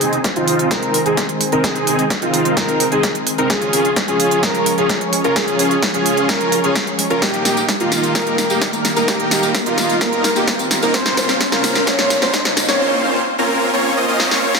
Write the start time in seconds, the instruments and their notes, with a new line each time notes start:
Already playing: analog synth pad D#3 G#3 C4 G#4 C5, riser
0.01 supersaw synth C4 D#4 G#4, grand piano G#4, open hi-hat
0.13 closed hi-hat
0.24 kick, snare, closed hi-hat
0.36 supersaw synth C4 D#4 F4, grand piano F4, closed hi-hat
0.48 open hi-hat
0.59 closed hi-hat
0.71 grand piano A#4, kick, snare, closed hi-hat
0.83 closed hi-hat
0.94 open hi-hat
1.06 supersaw synth C4 D#4 G#4, grand piano G#4, closed hi-hat
1.17 kick, snare, closed hi-hat
1.29 closed hi-hat
1.41 open hi-hat
1.52 supersaw synth C4 D#4 A#4, grand piano A#4, closed hi-hat
1.64 grand piano G#4, supersaw synth G#4, analog synth pad A#4, kick, snare, closed hi-hat
1.76 closed hi-hat
1.87 supersaw synth C4 D#4 G#4, grand piano G#4, open hi-hat
1.99 closed hi-hat
2.10 kick, snare, closed hi-hat
2.22 supersaw synth C4 D#4 F4, grand piano F4, closed hi-hat
2.34 open hi-hat
2.45 closed hi-hat
2.57 grand piano A#4, kick, snare, closed hi-hat
2.69 closed hi-hat
2.80 open hi-hat
2.92 supersaw synth C4 D#4 G#4, grand piano G#4, closed hi-hat
3.03 kick, snare, closed hi-hat
3.15 closed hi-hat
3.27 open hi-hat
3.38 supersaw synth C4 D#4 A#4, grand piano A#4, closed hi-hat
3.50 analog synth pad F3 C#4 G#4 C#5, grand piano G#4, kick, snare, closed hi-hat
3.62 closed hi-hat
3.73 supersaw synth C#4 F4 G#4, grand piano G#4, open hi-hat
3.85 closed hi-hat
3.96 kick, snare, closed hi-hat
4.08 supersaw synth C#4 F4 G#4, grand piano G#4, closed hi-hat
4.20 open hi-hat
4.31 closed hi-hat
4.43 supersaw synth C#4 F4 A#4, grand piano A#4, kick, snare, closed hi-hat
4.55 closed hi-hat
4.66 open hi-hat
4.78 supersaw synth C#4 F4 G#4, grand piano G#4, closed hi-hat
4.89 kick, snare, closed hi-hat
5.01 closed hi-hat
5.13 open hi-hat
5.24 supersaw synth C#4 F4 A#4, grand piano A#4, closed hi-hat
5.36 supersaw synth C#4 F4 G#4, grand piano G#4, kick, snare, closed hi-hat
5.48 closed hi-hat
5.59 supersaw synth C#4 F4 G#4, grand piano G#4, open hi-hat
5.71 closed hi-hat
5.82 kick, snare, closed hi-hat
5.94 supersaw synth C#4 F4 G#4, grand piano G#4, closed hi-hat
6.06 open hi-hat
6.17 closed hi-hat
6.29 supersaw synth C#4 A#4, grand piano A#4, kick, snare, closed hi-hat
6.41 closed hi-hat
6.52 open hi-hat
6.64 supersaw synth C#4 F4 G#4, grand piano G#4, closed hi-hat
6.76 kick, snare, closed hi-hat
6.87 closed hi-hat
6.99 open hi-hat
7.10 supersaw synth C#4 F4 A#4, grand piano A#4, closed hi-hat
7.22 analog synth pad D#3 G3 A#3 G4 A#4, supersaw synth A#3 D#4 G4, grand piano G4, kick, snare, closed hi-hat, tambourine
7.34 closed hi-hat
7.45 supersaw synth A#3 D#4 G4, grand piano G4, snare, open hi-hat, tambourine
7.57 closed hi-hat, tambourine
7.69 kick, snare, closed hi-hat, tambourine
7.80 supersaw synth A#3 D#4 F4, grand piano F4, closed hi-hat
7.92 snare, open hi-hat, tambourine
8.03 closed hi-hat, tambourine
8.15 supersaw synth A#3 D#4 A#4, grand piano A#4, kick, snare, closed hi-hat, tambourine
8.27 closed hi-hat
8.38 snare, open hi-hat, tambourine
8.50 supersaw synth A#3 D#4 G4, grand piano G4, closed hi-hat, tambourine
8.62 kick, snare, closed hi-hat, tambourine
8.73 closed hi-hat, tambourine
8.85 snare, open hi-hat, tambourine
8.96 supersaw synth A#3 D#4 A#4, grand piano A#4, closed hi-hat, tambourine
9.08 supersaw synth A#3 D#4 G4, analog synth pad F4, grand piano G4, kick, snare, closed hi-hat, tambourine
9.20 closed hi-hat
9.31 supersaw synth A#3 D#4 G4, grand piano G4, snare, open hi-hat, tambourine
9.43 closed hi-hat, tambourine
9.55 kick, snare, closed hi-hat, tambourine
9.66 supersaw synth A#3 D#4 F4, grand piano F4, closed hi-hat
9.78 snare, open hi-hat, tambourine
9.89 closed hi-hat, tambourine
10.01 supersaw synth A#3 A#4, grand piano A#4, kick, snare, closed hi-hat, tambourine
10.13 closed hi-hat
10.24 snare, open hi-hat, tambourine
10.36 supersaw synth A#3 D#4 G4, grand piano G4, closed hi-hat, tambourine
10.48 kick, snare, closed hi-hat, tambourine
10.59 closed hi-hat, tambourine
10.71 snare, open hi-hat, tambourine
10.82 supersaw synth A#3 D#4 A#4, grand piano A#4, closed hi-hat, tambourine
10.94 analog synth pad C#3 F4 C5, supersaw synth A#3 C4 C#4 F4 C5, grand piano C5, kick, snare, closed hi-hat, tambourine
11.06 snare, closed hi-hat
11.17 supersaw synth A#3 C4 C#4 F4 C5, grand piano C5, snare, open hi-hat, tambourine
11.29 snare, closed hi-hat, tambourine
11.41 kick, snare, closed hi-hat, tambourine
11.52 supersaw synth A#3 C4 C#4 F4 A#4, grand piano A#4, snare, closed hi-hat
11.64 snare, open hi-hat, tambourine
11.75 snare, closed hi-hat, tambourine
11.87 supersaw synth A#3 C4 C#4 F4 C#5, grand piano C#5, kick, snare, closed hi-hat, tambourine
11.99 snare, closed hi-hat
12.10 snare, open hi-hat, tambourine
12.22 supersaw synth A#3 C4 C#4 F4 C5, grand piano C5, snare, closed hi-hat, tambourine
12.34 kick, snare, closed hi-hat, tambourine
12.45 snare, closed hi-hat, tambourine
12.57 snare, open hi-hat, tambourine
12.69 supersaw synth A#3 C4 C#4 F4 C#5, grand piano C#5, snare, closed hi-hat, tambourine
12.80 supersaw synth A#3 C4 C#4 F4 C5
13.03 supersaw synth A#3 C4 C#4 F4 C5
13.38 supersaw synth A#3 C4 C#4 F4 A#4
13.73 supersaw synth A#3 C4 C#4 F4 C#5
13.96 supersaw synth A#3 C4 C#4 F4 D#5
14.08 supersaw synth A#3 C4 C#4 F4 D#5
14.20 snare
14.31 supersaw synth A#3 C4 C#4 F4 C#5, snare
14.55 snare